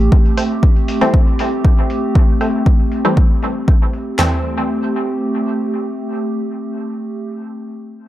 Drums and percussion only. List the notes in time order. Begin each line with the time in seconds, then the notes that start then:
0.12 kick
0.37 open hi-hat
0.63 kick
0.88 open hi-hat
1.01 open hi-hat
1.14 kick
1.39 open hi-hat
1.65 kick
1.90 open hi-hat
2.15 kick
2.41 open hi-hat
2.66 kick
2.92 open hi-hat
3.05 open hi-hat
3.17 kick
3.43 open hi-hat
3.68 kick
3.93 open hi-hat
4.19 snare, clap, floor tom